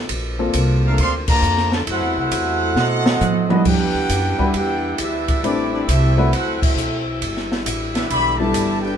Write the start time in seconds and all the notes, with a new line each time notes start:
Already playing: F3
0.09 A#1 D3 A#3, kick, ride
0.39 A#3 C4 D4 F4 A4
0.53 C2, kick, hi-hat pedal, ride
0.86 A3 D4 F4 A4 A#4 F5
0.98 D2 A4 D5 F5 C6, kick, ride
1.03 C4
1.28 D3 F3 A#3 F4 D5 A5 A#5, kick, crash
1.42 F2, hi-hat pedal
1.57 snare
1.72 D3 F3 A3 F4 A#4 D5 A5, snare
1.87 F#2 C3 F#3 A3 C4 E4 F#4 A4 C5 F#5, kick, ride
2.01 E2
2.16 C2 A3 E4 F#4 A4 C5 F#5
2.31 E2, kick, hi-hat pedal, ride
2.75 B2 B3 C4 D#5, snare
3.06 snare
3.21 A2, hi-hat pedal, mid tom
3.49 F#3 G3 A3 C4 D4 D#4 E4 F#4 A4 B4 D#5, mid tom
3.65 G2 D3 E3 G3 B3 D4 E4 G4 B4 F#5 G5, kick, crash
3.80 E2
3.94 D2
4.09 F#2, kick, hi-hat pedal, ride
4.38 G3 D4 E4 F#4 B4, kick
4.54 E2 B3 D4 G4 B4 F#5 G5, kick, ride
4.98 D2 G3 B3 D4 E4 G4 B4 E5, kick, hi-hat pedal, ride
5.28 kick, ride
5.42 A1 A3 B3 C4 D4 E4 G4 B4 D5, ride
5.73 B3 D4 E4 G4 D5
5.88 C2 G3 C4 E4 G4 A4 E5, kick, hi-hat pedal, ride
6.17 A3 C4 E4 F#4 B4
6.30 D2 F#3 A3 C4 E4 F#4 A4 B4 C5 F#5, kick, ride
6.61 A3 C4 E4 F#4 A4 E5, kick, crash
6.75 B1, hi-hat pedal
7.21 G1 D3 G3, kick, ride
7.37 snare
7.52 snare
7.66 A1, kick, hi-hat pedal, ride
7.94 E3 B3 D4 E4 G4 B4 E5, snare, ride
8.09 B1 D3 E3 B3 G4 D5 E5 B5, kick, ride
8.37 D3 E3 G3 A3 B3 D4 E4 G4 A4 D5 E5 A5
8.54 G1, kick, hi-hat pedal, ride
8.82 D4 E4 G4 B4 D5 G5